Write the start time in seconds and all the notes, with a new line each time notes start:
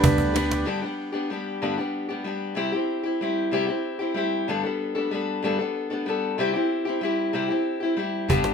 Already playing: D2 G2 D3 G3 B3 D4 G4 B4 D5 B5
0.04 cajon bass, ride
0.18 cajon bass
0.34 G3 B3 D4 B4, cajon slap, ride
0.52 cajon slap
0.65 G2 D3 G3 B3 D4 G4
0.82 G3 B3 D4 G4
1.12 G3 B3 D4 G4
1.30 G3 B3 D4 G4
1.62 G2 D3 G3 B3 D4 G4
1.78 G3 B3 D4 G4
2.09 G3 B3 D4 G4
2.24 G3 B3 D4 G4
2.55 C3 G3 C4 E4 G4
2.72 C4 E4 G4
3.03 C4 E4 G4
3.21 G3 C4 E4 G4
3.51 C3 G3 C4 E4 G4
3.67 C4 E4 G4
3.99 C4 E4 G4
4.14 G3 C4 E4 G4
4.48 G2 D3 G3 B3 D4 A4
4.63 G3 B3 D4 A4
4.95 G3 B3 D4 A4
5.11 G3 B3 D4 A4
5.43 G2 D3 G3 B3 D4 A4
5.59 G3 B3 D4 A4
5.90 G3 B3 D4 A4
6.06 G3 B3 D4 A4
6.38 C3 G3 C4 E4 G4
6.53 C4 E4 G4
6.85 C4 E4 G4
7.01 G3 C4 E4 G4
7.33 C3 G3 C4 E4 G4
7.48 C4 E4 G4
7.80 C4 E4 G4
7.97 G3 C4 E4 G4
8.28 G1 G2 D3 G3 B3 D4 G4, cajon bass
8.44 cajon slap